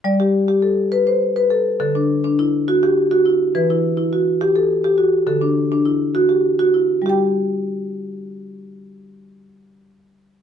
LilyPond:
\new Staff \with { instrumentName = "Marimba" } { \time 12/8 \key g \major \tempo 4. = 138 << { d''8 g'4. a'4. c''4. a'4 | a'8 d'4. e'4. g'4. e'4 | b'8 e'4. fis'4. a'4. fis'4 | a'8 d'4. e'4. g'4. e'4~ |
e'8 r1 r4. | r1. | } \\ { g4 r8 g'4 r8 b'4 r8 b'4 r8 | d4 r8 d'4 r8 fis'4 r8 fis'4 r8 | e4 r8 e'4 r8 g'4 r8 g'4 r8 | d4 r8 d'4 r8 fis'4 r8 fis'4 r8 |
<g g' g''>1.~ | <g g' g''>1. | } >> }